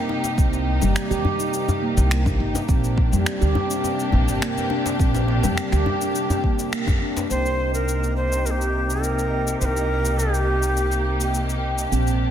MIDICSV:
0, 0, Header, 1, 7, 480
1, 0, Start_track
1, 0, Key_signature, -3, "minor"
1, 0, Tempo, 576923
1, 317, Time_signature, 4, 2, 24, 8
1, 10239, End_track
2, 0, Start_track
2, 0, Title_t, "Native American-style wooden flute"
2, 0, Program_c, 0, 77
2, 6076, Note_on_c, 0, 72, 102
2, 6416, Note_off_c, 0, 72, 0
2, 6440, Note_on_c, 0, 70, 85
2, 6771, Note_off_c, 0, 70, 0
2, 6794, Note_on_c, 0, 72, 83
2, 7036, Note_on_c, 0, 70, 71
2, 7048, Note_off_c, 0, 72, 0
2, 7077, Note_on_c, 0, 67, 77
2, 7086, Note_off_c, 0, 70, 0
2, 7513, Note_on_c, 0, 70, 84
2, 7525, Note_off_c, 0, 67, 0
2, 7989, Note_off_c, 0, 70, 0
2, 7994, Note_on_c, 0, 72, 81
2, 8030, Note_on_c, 0, 70, 89
2, 8039, Note_off_c, 0, 72, 0
2, 8473, Note_on_c, 0, 67, 81
2, 8486, Note_off_c, 0, 70, 0
2, 9435, Note_off_c, 0, 67, 0
2, 10239, End_track
3, 0, Start_track
3, 0, Title_t, "Handpan"
3, 0, Program_c, 1, 114
3, 76, Note_on_c, 1, 63, 73
3, 305, Note_off_c, 1, 63, 0
3, 316, Note_on_c, 1, 60, 77
3, 669, Note_off_c, 1, 60, 0
3, 679, Note_on_c, 1, 55, 102
3, 908, Note_off_c, 1, 55, 0
3, 920, Note_on_c, 1, 67, 99
3, 1030, Note_off_c, 1, 67, 0
3, 1161, Note_on_c, 1, 63, 71
3, 1505, Note_off_c, 1, 63, 0
3, 1516, Note_on_c, 1, 58, 72
3, 1636, Note_off_c, 1, 58, 0
3, 1757, Note_on_c, 1, 58, 79
3, 1876, Note_off_c, 1, 58, 0
3, 1996, Note_on_c, 1, 63, 77
3, 2225, Note_off_c, 1, 63, 0
3, 2236, Note_on_c, 1, 60, 78
3, 2589, Note_off_c, 1, 60, 0
3, 2600, Note_on_c, 1, 55, 109
3, 2829, Note_off_c, 1, 55, 0
3, 2838, Note_on_c, 1, 67, 97
3, 2950, Note_off_c, 1, 67, 0
3, 3080, Note_on_c, 1, 62, 70
3, 3425, Note_off_c, 1, 62, 0
3, 3434, Note_on_c, 1, 58, 71
3, 3554, Note_off_c, 1, 58, 0
3, 3676, Note_on_c, 1, 58, 78
3, 3795, Note_off_c, 1, 58, 0
3, 3915, Note_on_c, 1, 62, 75
3, 4145, Note_off_c, 1, 62, 0
3, 4156, Note_on_c, 1, 60, 81
3, 4509, Note_off_c, 1, 60, 0
3, 4522, Note_on_c, 1, 55, 104
3, 4750, Note_off_c, 1, 55, 0
3, 4762, Note_on_c, 1, 67, 103
3, 4872, Note_off_c, 1, 67, 0
3, 5004, Note_on_c, 1, 62, 74
3, 5347, Note_off_c, 1, 62, 0
3, 5358, Note_on_c, 1, 58, 72
3, 5477, Note_off_c, 1, 58, 0
3, 5599, Note_on_c, 1, 58, 76
3, 5717, Note_off_c, 1, 58, 0
3, 5837, Note_on_c, 1, 62, 76
3, 6066, Note_off_c, 1, 62, 0
3, 9917, Note_on_c, 1, 60, 76
3, 10239, Note_off_c, 1, 60, 0
3, 10239, End_track
4, 0, Start_track
4, 0, Title_t, "String section"
4, 0, Program_c, 2, 48
4, 0, Note_on_c, 2, 48, 78
4, 0, Note_on_c, 2, 58, 69
4, 0, Note_on_c, 2, 63, 71
4, 0, Note_on_c, 2, 67, 84
4, 2203, Note_off_c, 2, 48, 0
4, 2203, Note_off_c, 2, 67, 0
4, 2204, Note_off_c, 2, 58, 0
4, 2205, Note_off_c, 2, 63, 0
4, 2235, Note_on_c, 2, 48, 83
4, 2236, Note_on_c, 2, 62, 76
4, 2237, Note_on_c, 2, 58, 78
4, 2237, Note_on_c, 2, 67, 84
4, 6043, Note_off_c, 2, 48, 0
4, 6043, Note_off_c, 2, 62, 0
4, 6044, Note_off_c, 2, 58, 0
4, 6044, Note_off_c, 2, 67, 0
4, 6071, Note_on_c, 2, 48, 71
4, 6073, Note_on_c, 2, 63, 65
4, 6073, Note_on_c, 2, 67, 79
4, 6075, Note_on_c, 2, 58, 67
4, 9881, Note_off_c, 2, 48, 0
4, 9882, Note_off_c, 2, 63, 0
4, 9915, Note_on_c, 2, 62, 65
4, 9916, Note_on_c, 2, 48, 77
4, 10239, Note_off_c, 2, 48, 0
4, 10239, Note_off_c, 2, 58, 0
4, 10239, Note_off_c, 2, 62, 0
4, 10239, Note_off_c, 2, 67, 0
4, 10239, End_track
5, 0, Start_track
5, 0, Title_t, "Upright bass"
5, 0, Program_c, 3, 32
5, 315, Note_on_c, 3, 36, 88
5, 641, Note_off_c, 3, 36, 0
5, 682, Note_on_c, 3, 31, 76
5, 774, Note_off_c, 3, 31, 0
5, 921, Note_on_c, 3, 39, 86
5, 1014, Note_off_c, 3, 39, 0
5, 1641, Note_on_c, 3, 36, 96
5, 1960, Note_off_c, 3, 36, 0
5, 1998, Note_on_c, 3, 31, 85
5, 2097, Note_off_c, 3, 31, 0
5, 2236, Note_on_c, 3, 34, 83
5, 2561, Note_off_c, 3, 34, 0
5, 2603, Note_on_c, 3, 41, 77
5, 2695, Note_off_c, 3, 41, 0
5, 2842, Note_on_c, 3, 38, 89
5, 2934, Note_off_c, 3, 38, 0
5, 3437, Note_on_c, 3, 34, 82
5, 3537, Note_off_c, 3, 34, 0
5, 3562, Note_on_c, 3, 31, 87
5, 3654, Note_off_c, 3, 31, 0
5, 4157, Note_on_c, 3, 34, 89
5, 4482, Note_off_c, 3, 34, 0
5, 4523, Note_on_c, 3, 41, 76
5, 4614, Note_off_c, 3, 41, 0
5, 4761, Note_on_c, 3, 38, 87
5, 4854, Note_off_c, 3, 38, 0
5, 5722, Note_on_c, 3, 41, 97
5, 5814, Note_off_c, 3, 41, 0
5, 6078, Note_on_c, 3, 36, 71
5, 7975, Note_off_c, 3, 36, 0
5, 7997, Note_on_c, 3, 36, 70
5, 9894, Note_off_c, 3, 36, 0
5, 9916, Note_on_c, 3, 34, 72
5, 10239, Note_off_c, 3, 34, 0
5, 10239, End_track
6, 0, Start_track
6, 0, Title_t, "Djembe"
6, 76, Note_on_c, 9, 62, 42
6, 159, Note_off_c, 9, 62, 0
6, 199, Note_on_c, 9, 62, 52
6, 282, Note_off_c, 9, 62, 0
6, 444, Note_on_c, 9, 62, 45
6, 527, Note_off_c, 9, 62, 0
6, 680, Note_on_c, 9, 63, 67
6, 763, Note_off_c, 9, 63, 0
6, 1038, Note_on_c, 9, 64, 88
6, 1121, Note_off_c, 9, 64, 0
6, 1401, Note_on_c, 9, 64, 79
6, 1402, Note_on_c, 9, 62, 46
6, 1484, Note_off_c, 9, 64, 0
6, 1485, Note_off_c, 9, 62, 0
6, 1641, Note_on_c, 9, 62, 36
6, 1724, Note_off_c, 9, 62, 0
6, 1881, Note_on_c, 9, 64, 76
6, 1883, Note_on_c, 9, 63, 45
6, 1964, Note_off_c, 9, 64, 0
6, 1966, Note_off_c, 9, 63, 0
6, 2121, Note_on_c, 9, 63, 71
6, 2122, Note_on_c, 9, 62, 58
6, 2205, Note_off_c, 9, 62, 0
6, 2205, Note_off_c, 9, 63, 0
6, 2603, Note_on_c, 9, 63, 64
6, 2687, Note_off_c, 9, 63, 0
6, 2955, Note_on_c, 9, 64, 97
6, 3038, Note_off_c, 9, 64, 0
6, 3195, Note_on_c, 9, 63, 62
6, 3278, Note_off_c, 9, 63, 0
6, 3431, Note_on_c, 9, 64, 81
6, 3514, Note_off_c, 9, 64, 0
6, 3566, Note_on_c, 9, 62, 33
6, 3649, Note_off_c, 9, 62, 0
6, 3808, Note_on_c, 9, 63, 50
6, 3891, Note_off_c, 9, 63, 0
6, 3910, Note_on_c, 9, 62, 51
6, 3993, Note_off_c, 9, 62, 0
6, 4041, Note_on_c, 9, 62, 70
6, 4124, Note_off_c, 9, 62, 0
6, 4280, Note_on_c, 9, 62, 58
6, 4282, Note_on_c, 9, 63, 52
6, 4364, Note_off_c, 9, 62, 0
6, 4365, Note_off_c, 9, 63, 0
6, 4395, Note_on_c, 9, 62, 34
6, 4479, Note_off_c, 9, 62, 0
6, 4521, Note_on_c, 9, 63, 82
6, 4604, Note_off_c, 9, 63, 0
6, 4876, Note_on_c, 9, 64, 90
6, 4960, Note_off_c, 9, 64, 0
6, 5241, Note_on_c, 9, 64, 78
6, 5245, Note_on_c, 9, 62, 49
6, 5324, Note_off_c, 9, 64, 0
6, 5328, Note_off_c, 9, 62, 0
6, 5484, Note_on_c, 9, 62, 37
6, 5567, Note_off_c, 9, 62, 0
6, 5713, Note_on_c, 9, 63, 63
6, 5719, Note_on_c, 9, 64, 85
6, 5797, Note_off_c, 9, 63, 0
6, 5802, Note_off_c, 9, 64, 0
6, 5962, Note_on_c, 9, 62, 71
6, 5964, Note_on_c, 9, 63, 81
6, 6045, Note_off_c, 9, 62, 0
6, 6048, Note_off_c, 9, 63, 0
6, 10239, End_track
7, 0, Start_track
7, 0, Title_t, "Drums"
7, 203, Note_on_c, 9, 69, 64
7, 286, Note_off_c, 9, 69, 0
7, 315, Note_on_c, 9, 36, 110
7, 320, Note_on_c, 9, 69, 50
7, 398, Note_off_c, 9, 36, 0
7, 403, Note_off_c, 9, 69, 0
7, 443, Note_on_c, 9, 69, 31
7, 527, Note_off_c, 9, 69, 0
7, 683, Note_on_c, 9, 69, 61
7, 766, Note_off_c, 9, 69, 0
7, 798, Note_on_c, 9, 26, 90
7, 799, Note_on_c, 9, 69, 55
7, 881, Note_off_c, 9, 26, 0
7, 883, Note_off_c, 9, 69, 0
7, 924, Note_on_c, 9, 69, 31
7, 1008, Note_off_c, 9, 69, 0
7, 1164, Note_on_c, 9, 69, 64
7, 1247, Note_off_c, 9, 69, 0
7, 1278, Note_on_c, 9, 69, 57
7, 1362, Note_off_c, 9, 69, 0
7, 1404, Note_on_c, 9, 69, 30
7, 1487, Note_off_c, 9, 69, 0
7, 1644, Note_on_c, 9, 69, 65
7, 1727, Note_off_c, 9, 69, 0
7, 1757, Note_on_c, 9, 26, 92
7, 1759, Note_on_c, 9, 69, 51
7, 1840, Note_off_c, 9, 26, 0
7, 1842, Note_off_c, 9, 69, 0
7, 1881, Note_on_c, 9, 36, 96
7, 1884, Note_on_c, 9, 69, 30
7, 1964, Note_off_c, 9, 36, 0
7, 1968, Note_off_c, 9, 69, 0
7, 2124, Note_on_c, 9, 69, 63
7, 2207, Note_off_c, 9, 69, 0
7, 2235, Note_on_c, 9, 36, 113
7, 2238, Note_on_c, 9, 69, 50
7, 2319, Note_off_c, 9, 36, 0
7, 2321, Note_off_c, 9, 69, 0
7, 2364, Note_on_c, 9, 69, 32
7, 2447, Note_off_c, 9, 69, 0
7, 2476, Note_on_c, 9, 36, 86
7, 2559, Note_off_c, 9, 36, 0
7, 2604, Note_on_c, 9, 69, 61
7, 2687, Note_off_c, 9, 69, 0
7, 2716, Note_on_c, 9, 26, 99
7, 2717, Note_on_c, 9, 69, 51
7, 2799, Note_off_c, 9, 26, 0
7, 2801, Note_off_c, 9, 69, 0
7, 2843, Note_on_c, 9, 69, 29
7, 2926, Note_off_c, 9, 69, 0
7, 3084, Note_on_c, 9, 69, 59
7, 3167, Note_off_c, 9, 69, 0
7, 3200, Note_on_c, 9, 69, 50
7, 3283, Note_off_c, 9, 69, 0
7, 3324, Note_on_c, 9, 69, 31
7, 3408, Note_off_c, 9, 69, 0
7, 3565, Note_on_c, 9, 69, 60
7, 3648, Note_off_c, 9, 69, 0
7, 3679, Note_on_c, 9, 26, 101
7, 3681, Note_on_c, 9, 69, 54
7, 3762, Note_off_c, 9, 26, 0
7, 3764, Note_off_c, 9, 69, 0
7, 3807, Note_on_c, 9, 69, 32
7, 3890, Note_off_c, 9, 69, 0
7, 4046, Note_on_c, 9, 69, 66
7, 4129, Note_off_c, 9, 69, 0
7, 4156, Note_on_c, 9, 36, 112
7, 4162, Note_on_c, 9, 69, 50
7, 4239, Note_off_c, 9, 36, 0
7, 4245, Note_off_c, 9, 69, 0
7, 4285, Note_on_c, 9, 69, 30
7, 4368, Note_off_c, 9, 69, 0
7, 4526, Note_on_c, 9, 69, 62
7, 4609, Note_off_c, 9, 69, 0
7, 4639, Note_on_c, 9, 26, 103
7, 4640, Note_on_c, 9, 69, 52
7, 4722, Note_off_c, 9, 26, 0
7, 4724, Note_off_c, 9, 69, 0
7, 4763, Note_on_c, 9, 26, 27
7, 4764, Note_on_c, 9, 69, 29
7, 4846, Note_off_c, 9, 26, 0
7, 4848, Note_off_c, 9, 69, 0
7, 5003, Note_on_c, 9, 69, 61
7, 5087, Note_off_c, 9, 69, 0
7, 5120, Note_on_c, 9, 69, 50
7, 5203, Note_off_c, 9, 69, 0
7, 5244, Note_on_c, 9, 69, 31
7, 5327, Note_off_c, 9, 69, 0
7, 5356, Note_on_c, 9, 36, 57
7, 5440, Note_off_c, 9, 36, 0
7, 5483, Note_on_c, 9, 69, 65
7, 5567, Note_off_c, 9, 69, 0
7, 5597, Note_on_c, 9, 26, 100
7, 5599, Note_on_c, 9, 69, 51
7, 5680, Note_off_c, 9, 26, 0
7, 5682, Note_off_c, 9, 69, 0
7, 5721, Note_on_c, 9, 36, 93
7, 5724, Note_on_c, 9, 69, 31
7, 5805, Note_off_c, 9, 36, 0
7, 5807, Note_off_c, 9, 69, 0
7, 5966, Note_on_c, 9, 69, 68
7, 6049, Note_off_c, 9, 69, 0
7, 6080, Note_on_c, 9, 69, 48
7, 6163, Note_off_c, 9, 69, 0
7, 6205, Note_on_c, 9, 69, 29
7, 6288, Note_off_c, 9, 69, 0
7, 6445, Note_on_c, 9, 69, 59
7, 6528, Note_off_c, 9, 69, 0
7, 6561, Note_on_c, 9, 69, 49
7, 6644, Note_off_c, 9, 69, 0
7, 6686, Note_on_c, 9, 69, 26
7, 6769, Note_off_c, 9, 69, 0
7, 6926, Note_on_c, 9, 69, 54
7, 7009, Note_off_c, 9, 69, 0
7, 7040, Note_on_c, 9, 69, 50
7, 7124, Note_off_c, 9, 69, 0
7, 7166, Note_on_c, 9, 69, 27
7, 7250, Note_off_c, 9, 69, 0
7, 7406, Note_on_c, 9, 69, 55
7, 7489, Note_off_c, 9, 69, 0
7, 7520, Note_on_c, 9, 69, 49
7, 7603, Note_off_c, 9, 69, 0
7, 7644, Note_on_c, 9, 69, 28
7, 7728, Note_off_c, 9, 69, 0
7, 7884, Note_on_c, 9, 69, 55
7, 7967, Note_off_c, 9, 69, 0
7, 7999, Note_on_c, 9, 69, 48
7, 8082, Note_off_c, 9, 69, 0
7, 8125, Note_on_c, 9, 69, 30
7, 8209, Note_off_c, 9, 69, 0
7, 8364, Note_on_c, 9, 69, 62
7, 8447, Note_off_c, 9, 69, 0
7, 8481, Note_on_c, 9, 69, 52
7, 8564, Note_off_c, 9, 69, 0
7, 8605, Note_on_c, 9, 69, 30
7, 8688, Note_off_c, 9, 69, 0
7, 8842, Note_on_c, 9, 69, 63
7, 8926, Note_off_c, 9, 69, 0
7, 8960, Note_on_c, 9, 69, 51
7, 9043, Note_off_c, 9, 69, 0
7, 9084, Note_on_c, 9, 69, 29
7, 9167, Note_off_c, 9, 69, 0
7, 9324, Note_on_c, 9, 69, 60
7, 9407, Note_off_c, 9, 69, 0
7, 9438, Note_on_c, 9, 69, 52
7, 9521, Note_off_c, 9, 69, 0
7, 9564, Note_on_c, 9, 69, 30
7, 9647, Note_off_c, 9, 69, 0
7, 9804, Note_on_c, 9, 69, 64
7, 9887, Note_off_c, 9, 69, 0
7, 9921, Note_on_c, 9, 69, 52
7, 10004, Note_off_c, 9, 69, 0
7, 10044, Note_on_c, 9, 69, 30
7, 10128, Note_off_c, 9, 69, 0
7, 10239, End_track
0, 0, End_of_file